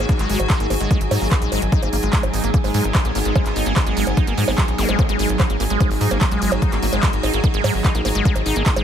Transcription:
Already playing: ambient pad F#3 F#4, analog synth pad D#4 G#4 G#5, downlifter
0.09 acid bass A#3, kick, closed hi-hat
0.19 analog synth bass G#1, acid bass G#3, clap, closed hi-hat
0.29 analog synth bass G#1, acid bass G#3, open hi-hat
0.40 analog synth bass G#1, closed hi-hat, high bongo
0.50 acid bass D#4, kick, clap, closed hi-hat
0.60 analog synth bass G#1, acid bass A#3, closed hi-hat
0.70 analog synth bass G#1, acid bass A#3, open hi-hat, high bongo
0.80 analog synth bass G#1, acid bass G#3, closed hi-hat
0.91 acid bass G#3, kick, closed hi-hat
1.01 analog synth bass G#1, closed hi-hat
1.11 analog synth bass G#2, acid bass D#4, open hi-hat, high bongo
1.21 analog synth bass G#1, acid bass A#3, open hi-hat
1.31 acid bass A#3, kick, clap, closed hi-hat
1.42 analog synth bass A#1, acid bass G#3, closed hi-hat
1.52 analog synth bass G#1, acid bass G#3, open hi-hat, high bongo
1.62 analog synth bass G#1, closed hi-hat
1.72 ambient pad B3, acid bass D#4, kick, closed hi-hat
1.82 analog synth bass G#1, acid bass A#3, closed hi-hat, high bongo
1.93 analog synth bass G#1, acid bass A#3, open hi-hat
2.03 analog synth bass G#1, acid bass G#3, closed hi-hat
2.13 acid bass G#3, kick, clap, closed hi-hat
2.23 analog synth bass G#1, closed hi-hat, high bongo
2.33 analog synth bass G#1, acid bass D#4, open hi-hat
2.44 analog synth bass G#1, acid bass A#3, closed hi-hat
2.54 acid bass A#3, kick, closed hi-hat
2.64 analog synth bass G#1, acid bass G#3, open hi-hat, high bongo
2.74 analog synth bass G#2, acid bass G#3, open hi-hat
2.84 analog synth bass G#1, closed hi-hat
2.95 acid bass D#4, kick, clap, closed hi-hat, high bongo
3.05 analog synth bass A#1, acid bass A#3, closed hi-hat
3.15 analog synth bass G#1, acid bass A#3, open hi-hat
3.25 analog synth bass G#1, acid bass G#3, closed hi-hat
3.35 acid bass G#3, kick, closed hi-hat, high bongo
3.46 analog synth bass G#1, clap, closed hi-hat
3.56 analog synth bass G#1, acid bass D#4, open hi-hat
3.66 analog synth bass G#1, acid bass A#3, closed hi-hat
3.76 acid bass A#3, kick, clap, closed hi-hat, high bongo
3.86 analog synth bass G#1, acid bass G#3, closed hi-hat
3.97 analog synth bass G#1, acid bass G#3, open hi-hat
4.07 analog synth bass G#1, closed hi-hat, high bongo
4.17 acid bass D#4, kick, closed hi-hat
4.27 analog synth bass G#1, acid bass A#3, closed hi-hat
4.38 analog synth bass G#2, acid bass G#3, open hi-hat
4.48 analog synth bass G#1, acid bass G#3, open hi-hat, high bongo
4.58 acid bass F#3, kick, clap, closed hi-hat
4.68 analog synth bass A#1, closed hi-hat
4.78 analog synth bass G#1, acid bass A#3, open hi-hat, zap
4.89 analog synth bass G#1, acid bass G#3, closed hi-hat, high bongo
4.99 acid bass A#3, ambient pad F#4, kick, closed hi-hat, high bongo
5.09 analog synth bass G#1, acid bass G#3, closed hi-hat
5.19 analog synth bass G#1, acid bass G#3, open hi-hat
5.29 analog synth bass G#1, closed hi-hat
5.40 acid bass D#4, kick, clap, closed hi-hat, high bongo
5.50 analog synth bass G#1, acid bass A#3, closed hi-hat
5.60 analog synth bass G#1, acid bass A#3, open hi-hat
5.70 analog synth bass G#1, acid bass G#3, closed hi-hat
5.80 acid bass G#3, kick, closed hi-hat, high bongo
5.91 analog synth bass G#1, open hi-hat
6.01 analog synth bass G#2, acid bass D#4, open hi-hat
6.11 analog synth bass G#1, acid bass A#3, closed hi-hat, high bongo
6.17 acid bass A#3, analog synth pad A#5, kick, clap, closed hi-hat
6.31 analog synth bass A#1, acid bass G#3, closed hi-hat
6.42 analog synth bass G#1, acid bass G#3, open hi-hat
6.52 analog synth bass G#1, closed hi-hat, high bongo
6.62 acid bass D#4, kick, closed hi-hat
6.72 analog synth bass G#1, acid bass A#3, clap, closed hi-hat
6.82 analog synth bass G#1, acid bass A#3, open hi-hat
6.93 analog synth bass G#1, acid bass G#3, closed hi-hat, high bongo
7.03 acid bass G#3, kick, clap, closed hi-hat
7.13 analog synth bass G#1, closed hi-hat
7.23 analog synth bass G#1, acid bass D#4, open hi-hat, high bongo
7.33 analog synth bass G#1, acid bass A#3, closed hi-hat
7.44 acid bass A#3, kick, closed hi-hat
7.54 analog synth bass G#1, acid bass G#3, closed hi-hat
7.64 analog synth bass G#2, acid bass G#3, open hi-hat, high bongo
7.74 analog synth bass G#1, open hi-hat
7.84 acid bass D#4, kick, clap, closed hi-hat
7.95 analog synth bass A#1, acid bass A#3, closed hi-hat
8.05 analog synth bass G#1, acid bass A#3, open hi-hat, high bongo
8.15 analog synth bass G#1, acid bass G#3, closed hi-hat
8.25 acid bass G#3, ambient pad G#3, kick, closed hi-hat
8.36 analog synth bass G#1, closed hi-hat, high bongo
8.46 analog synth bass G#1, acid bass D#4, open hi-hat
8.56 analog synth bass G#1, acid bass A#3, closed hi-hat
8.66 acid bass A#3, kick, clap, closed hi-hat
8.76 analog synth bass G#1, acid bass G#3, closed hi-hat, high bongo

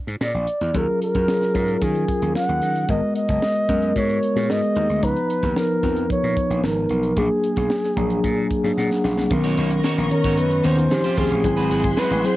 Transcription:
0.07 slap bass G#2, closed hi-hat
0.21 slap bass A#2, flugelhorn D5, snare
0.34 slap bass A#1
0.47 closed hi-hat
0.61 slap bass E2, closed hi-hat
0.74 slap bass D#2, tine electric piano F#3 C#4 F4 G#4, flugelhorn A#4, kick, closed hi-hat
1.02 flugelhorn A#4, closed hi-hat
1.14 slap bass F#2, kick, closed hi-hat
1.27 tine electric piano F#3 C#4 F4 G#4, snare
1.41 snare, closed hi-hat
1.54 slap bass G#2, tine electric piano F#3 C#4 F4 A#4, kick, closed hi-hat
1.68 closed hi-hat
1.82 slap bass D#3, flugelhorn G#4, kick, closed hi-hat
1.95 closed hi-hat
2.09 kick, closed hi-hat
2.22 slap bass D#2, closed hi-hat
2.36 flugelhorn F#5, snare
2.49 slap bass D#2, closed hi-hat
2.62 slap bass D#3, closed hi-hat
2.75 closed hi-hat
2.89 slap bass G#1, tine electric piano G#3 B3 F#4 A#4, flugelhorn D#5, kick, closed hi-hat
3.16 flugelhorn D#5, closed hi-hat
3.28 slap bass F#1, kick, snare, closed hi-hat
3.42 snare
3.55 closed hi-hat
3.68 slap bass F#2, tine electric piano G#3 B3 F#4 A#4, kick, snare, closed hi-hat
3.82 closed hi-hat
3.96 slap bass G#2, flugelhorn C#5, kick, closed hi-hat
4.10 closed hi-hat
4.23 closed hi-hat
4.35 slap bass A#2, tine electric piano G#3 B3 F#4 G#4, snare, closed hi-hat
4.49 slap bass G#2, flugelhorn D#5, snare
4.63 closed hi-hat
4.76 slap bass D#2, closed hi-hat
4.89 slap bass D2, closed hi-hat
5.02 slap bass C#2, tine electric piano F3 B3 D#4 A#5, flugelhorn B4, kick, closed hi-hat
5.16 closed hi-hat
5.30 closed hi-hat
5.43 slap bass D#2, kick, snare, closed hi-hat
5.55 tine electric piano F3 B3 D#4 B4, flugelhorn A#4, snare
5.82 slap bass F2, tine electric piano F3 B3 D#4 A#4, kick, snare, closed hi-hat
5.96 closed hi-hat
6.10 flugelhorn C#5, kick, closed hi-hat
6.23 slap bass A#2
6.37 kick, closed hi-hat
6.50 slap bass A#1, closed hi-hat
6.63 slap bass G#1, flugelhorn A#4, snare
6.89 slap bass B1, closed hi-hat
7.03 closed hi-hat
7.16 slap bass A#1, tine electric piano F#3 A#3 D4 G#4, flugelhorn G#4, kick, closed hi-hat
7.44 closed hi-hat
7.56 slap bass B1, kick, snare, closed hi-hat
7.70 snare
7.84 snare
7.96 slap bass A#1, tine electric piano F#3 A#3 D4 G#4 A#5, kick, closed hi-hat
8.10 closed hi-hat
8.24 slap bass A#2, tine electric piano G#5, kick, closed hi-hat
8.50 kick, closed hi-hat
8.63 slap bass G#2, tine electric piano F#3 A#3 D4 G#4, snare, closed hi-hat
8.77 slap bass A#2, tine electric piano F#5, snare
8.91 snare
9.04 slap bass A#1, snare
9.17 slap bass C2, snare
9.30 slap bass B1, tine electric piano D#3 B3 C#4 A#4, string section B3 D#5 A#5 C#6, muted clean electric guitar stroke, kick, crash, shaker
9.43 clean electric guitar A#3 D#4 F#4 C#5, closed hi-hat, shaker
9.57 slap bass B1, clean electric guitar A#3 D#4 F#4 C#5, closed hi-hat
9.70 muted clean electric guitar stroke, closed hi-hat, shaker
9.84 clean electric guitar A#3 D#4 F#4 C#5, snare, shaker
9.97 slap bass A#1, muted clean electric guitar stroke, snare, closed hi-hat, shaker
10.10 tine electric piano D#3 B3 C#4 C#5, flugelhorn A#4, muted clean electric guitar stroke, closed hi-hat
10.24 slap bass G#2, clean electric guitar A#3 D#4 F#4 C#5, kick, closed hi-hat, shaker
10.37 slap bass F#2, flugelhorn B4, muted clean electric guitar stroke, closed hi-hat, shaker
10.51 muted clean electric guitar stroke, closed hi-hat, shaker
10.63 slap bass D#2, tine electric piano D#3 B3 C#4 B4, clean electric guitar A#3 D#4 F#4 C#5, flugelhorn C5, closed hi-hat
10.76 tine electric piano D#3 B3 C#4 A#4, muted clean electric guitar stroke, closed hi-hat, shaker
10.90 slap bass D#3, tine electric piano F3 C4 C#4 G4, string section G4 C#5 F5 C6, muted clean electric guitar stroke, snare, shaker
11.03 tine electric piano F3 C4 C#4 G4, clean electric guitar C#4 F4 G4 C5, closed hi-hat, shaker
11.17 slap bass D#2, clean electric guitar C#4 F4 G4 C5, flugelhorn G#4, kick, open hi-hat, shaker
11.31 slap bass A1, muted clean electric guitar stroke, closed hi-hat, shaker
11.43 slap bass G#1, tine electric piano F#3 C4 E4 G#4, string section G#4 E5 F#5, muted clean electric guitar stroke, kick, closed hi-hat, shaker
11.57 clean electric guitar G#3 C4 F#4 B4, closed hi-hat, shaker
11.71 slap bass G#1, clean electric guitar G#3 C4 F#4 B4, closed hi-hat
11.84 muted clean electric guitar stroke, kick, closed hi-hat, shaker
11.97 clean electric guitar G#3 C4 F#4 B4, flugelhorn B4, snare, shaker
12.10 slap bass A1, muted clean electric guitar stroke, snare, closed hi-hat, shaker
12.24 tine electric piano F#3 C4 E4 G#4, flugelhorn C5, muted clean electric guitar stroke, snare, closed hi-hat

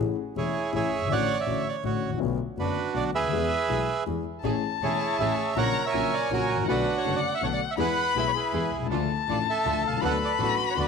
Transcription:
0.00 grand piano A1 A2 E3 A3 C#4 G#4, double bass A1
0.36 grand piano E1 E2 E3 A3 C#4 G#4, double bass E1, bandoneon E4 G#4 C#5
0.73 grand piano A1 A2 E3 A3 C#4 G#4, double bass A1, bandoneon G#4 C#5 E5
0.92 double bass G1
0.97 grand piano F#1
1.01 grand piano G1
1.06 grand piano G#1
1.10 double bass A1, grand piano A1 A2 D3 A3 C#4 F#4, bandoneon C#5 D5 F#5
1.40 bandoneon C#5 E5
1.46 grand piano A1 A2 D3 A3 C#4 F#4, double bass A1
1.69 bandoneon D5
1.83 grand piano A1 A2 D3 A3 C#4 F#4, double bass A1, bandoneon F#4 C#5
2.04 double bass A1
2.08 grand piano G#1
2.12 grand piano A1
2.18 grand piano A#1 B1 B2 D3 A3 B3 F#4
2.22 double bass B1
2.57 grand piano F#1 F#2 D3 A3 B3 F#4, double bass F#1, bandoneon D4 F#4 B4
2.93 grand piano B1 B2 D3 A3 B3 F#4, double bass B1, bandoneon D5
3.14 double bass D2, bandoneon G#4 B4 E5
3.18 grand piano C#2
3.23 grand piano D2
3.28 grand piano D#2
3.32 double bass E2, grand piano E2 E3 G#3 B3 G#4
3.69 double bass B1, grand piano B1 B2 E3 G#3 B3 G#4
4.06 grand piano E2 E3 G#3 B3 G#4, double bass E2
4.43 grand piano A1 A2 E3 A3 C#4 G#4, double bass A1, string section A3 C#4 G#4, violin A5
4.82 double bass E1, grand piano E1 E2 E3 A3 C#4 G#4, string section A3 C#4 G#4, bandoneon E4 G#4 C#5
5.19 double bass A1, grand piano A1 A2 E3 A3 C#4 G#4, string section A3 C#4 G#4, bandoneon G#4 C#5 E5
5.56 double bass A#1, grand piano A#1 A#2 C#3 F#3 A#3 F#4, string section A#3 C#4 F#4, bandoneon A#4 C#5 F#5, violin A#5
5.86 bandoneon A#4 C#5 E5
5.93 double bass A#1, grand piano A#1 A#2 C#3 F#3 A#3 F#4, string section A#3 C#4 F#4, violin G#5
6.13 bandoneon D5
6.31 double bass A#1, grand piano A#1 A#2 C#3 F#3 A#3 F#4, string section A#3 C#4 F#4, bandoneon F#4 A#4 C#5
6.49 double bass A1
6.54 grand piano G#1
6.60 grand piano A1 A#1
6.67 grand piano B1 B2 D3 A3 B3 F#4, double bass B1, string section B3 D4 A4, bandoneon D4 F#4 B4, violin F#5
6.97 bandoneon C#5
7.04 grand piano F#1 F#2 D3 A3 B3 F#4, double bass F#1, string section B3 D4 A4
7.16 bandoneon D5
7.34 bandoneon E5
7.41 grand piano B1 B2 D3 A3 B3 F#4, double bass B1, string section B3 D4 A4, bandoneon C#5
7.53 bandoneon D5
7.71 bandoneon E5
7.77 grand piano E2 E3 G#3 B3 G#4, double bass E2, string section B3 E4 G#4, bandoneon B4 F#5, violin B5
8.16 double bass B1, grand piano B1 B2 E3 G#3 B3 G#4, string section B3 E4 G#4, bandoneon E5
8.27 bandoneon C#5
8.36 bandoneon E4 G#4 B4
8.53 double bass E2, grand piano E2 E3 G#3 B3 G#4, string section B3 E4 G#4
8.72 double bass C2
8.77 grand piano B1
8.82 grand piano C2 C#2
8.90 grand piano D2 D3 F3 A3 D4 A4, double bass D2, string section D4 F4 A4, violin A5
9.28 double bass A1, grand piano A1 A2 F3 A3 D4 A4, string section D4 F4 A4, bandoneon D5
9.49 bandoneon A4 E5
9.65 double bass D2, grand piano D2 D3 F3 A3 D4 A4, string section D4 F4 A4
9.84 double bass C2, bandoneon F5
9.88 grand piano B1
9.92 grand piano C2
9.97 grand piano C#2 D3
10.01 grand piano D2 F#3 B3 D4 A4, double bass D2, string section D4 F#4 B4, bandoneon A4 B4, violin B5
10.05 bandoneon F#5
10.25 bandoneon D5
10.38 grand piano A1 A2 F#3 B3 D4 A4, double bass A1, string section D4 F#4 B4
10.43 bandoneon F#4 B4
10.70 bandoneon C#5
10.75 grand piano D2 D3 F#3 B3 D4 A4, double bass D2, string section D4 F#4 B4
10.79 bandoneon F#4 B4 D5

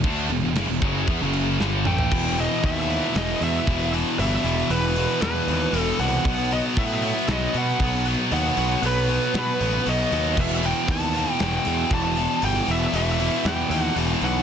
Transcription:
0.04 picked electric bass D2, distorted electric guitar D3 A3 D4, kick, crash
0.30 picked electric bass E1, distorted electric guitar E2 B2, crash
0.42 picked electric bass E1, distorted electric guitar E2 B2
0.55 picked electric bass F#1, distorted electric guitar F#2 C#3, snare, crash
0.69 picked electric bass E1, distorted electric guitar E2 B2
0.81 picked electric bass F#1, distorted electric guitar F#2 C#3 F#3, kick, crash
1.07 picked electric bass E2, distorted electric guitar E3 B3, kick, crash
1.21 picked electric bass F#1, distorted electric guitar F#2 C#3 F#3
1.33 crash
1.60 picked electric bass G1, distorted electric guitar G2 D3 G3, snare
1.85 picked electric bass A1, distorted electric guitar A2 E3 A3, lead electric guitar G5, mid tom
1.98 floor tom
2.11 picked electric bass E1, distorted electric guitar E2 B2 E3, kick, crash
2.37 distorted electric guitar E2 B2 E3, lead electric guitar D#5, open hi-hat
2.63 picked electric bass D#2, distorted electric guitar E2 B2 E3, lead electric guitar E5, kick, open hi-hat
2.89 distorted electric guitar E2 B2 E3, open hi-hat
3.15 picked electric bass E1, distorted electric guitar E2 B2 E3, lead electric guitar D#5, snare, open hi-hat
3.41 picked electric bass E2, distorted electric guitar E2 B2 E3, lead electric guitar E5, open hi-hat
3.67 picked electric bass E1, distorted electric guitar E2 B2 E3, kick, open hi-hat
3.93 distorted electric guitar E2 B2 E3, open hi-hat
4.19 picked electric bass G1, distorted electric guitar E2 B2 E3, lead electric guitar E5, open hi-hat
4.44 picked electric bass E1, distorted electric guitar E2 B2 E3, open hi-hat
4.70 picked electric bass E1, distorted electric guitar E2 B2 E3, lead electric guitar B4, open hi-hat
4.96 distorted electric guitar E2 B2 E3, open hi-hat
5.22 picked electric bass E2, distorted electric guitar E2 B2 E3, lead electric guitar B4, snare
5.47 picked electric bass D#2, distorted electric guitar E2 B2 E3, open hi-hat
5.73 picked electric bass E1, distorted electric guitar E2 B2 E3, open hi-hat
5.81 lead electric guitar A4
5.99 picked electric bass C2, distorted electric guitar E2 B2 E3, lead electric guitar F#5, open hi-hat
6.25 picked electric bass B1, distorted electric guitar B2 F#3 B3, kick, open hi-hat
6.51 distorted electric guitar B2 F#3 B3, lead electric guitar D#5, open hi-hat
6.77 picked electric bass A2, distorted electric guitar B2 F#3 B3, lead electric guitar E5, kick, open hi-hat
7.02 distorted electric guitar B2 F#3 B3, open hi-hat
7.27 picked electric bass B1, distorted electric guitar B2 F#3 B3, snare, open hi-hat
7.31 lead electric guitar D#5
7.53 distorted electric guitar B2 F#3 B3, picked electric bass B2, open hi-hat
7.58 lead electric guitar F#5
7.79 picked electric bass B1, distorted electric guitar B2 F#3 B3, kick, open hi-hat
8.05 distorted electric guitar B2 F#3 B3, open hi-hat
8.31 picked electric bass D#2, distorted electric guitar B2 F#3 B3, lead electric guitar F#5, open hi-hat
8.57 picked electric bass B1, distorted electric guitar B2 F#3 B3, open hi-hat
8.82 picked electric bass B1, distorted electric guitar B2 F#3 B3, lead electric guitar B4, open hi-hat
9.08 distorted electric guitar B2 F#3 B3, open hi-hat
9.34 distorted electric guitar B2 F#3 B3, picked electric bass B2, lead electric guitar B4, snare
9.61 picked electric bass A1, distorted electric guitar B2 F#3 B3, open hi-hat
9.86 picked electric bass B1, distorted electric guitar B2 F#3 B3, lead electric guitar D#5, open hi-hat
10.12 picked electric bass D#2, distorted electric guitar B2 F#3 B3, open hi-hat
10.37 picked electric bass E1, distorted electric guitar E2 B2 E3, lead electric guitar E5, kick, crash
10.62 distorted electric guitar E2 B2 E3, lead electric guitar G5, open hi-hat
10.88 picked electric bass D#2, distorted electric guitar E2 B2 E3, lead electric guitar A5, kick, open hi-hat
11.14 distorted electric guitar E2 B2 E3, open hi-hat
11.39 picked electric bass E1, distorted electric guitar E2 B2 E3, snare, open hi-hat
11.44 lead electric guitar G5
11.65 distorted electric guitar E2 B2 E3, picked electric bass E2, open hi-hat
11.90 picked electric bass E1, distorted electric guitar E2 B2 E3, lead electric guitar A5, kick, open hi-hat
12.17 distorted electric guitar E2 B2 E3, open hi-hat
12.42 picked electric bass G1, distorted electric guitar E2 B2 E3, lead electric guitar G5, open hi-hat
12.68 picked electric bass E1, distorted electric guitar E2 B2 E3, lead electric guitar E5, open hi-hat
12.93 picked electric bass E1, distorted electric guitar E2 B2 E3, lead electric guitar E5, open hi-hat
13.20 distorted electric guitar E2 B2 E3, open hi-hat
13.45 picked electric bass E2, distorted electric guitar E2 B2 E3, lead electric guitar G5, snare, open hi-hat
13.70 picked electric bass D#2, distorted electric guitar E2 B2 E3, open hi-hat
13.81 lead electric guitar F#5
13.96 picked electric bass E1, distorted electric guitar E2 B2 E3, open hi-hat
14.21 picked electric bass B1, distorted electric guitar E2 B2 E3, lead electric guitar F#5, open hi-hat

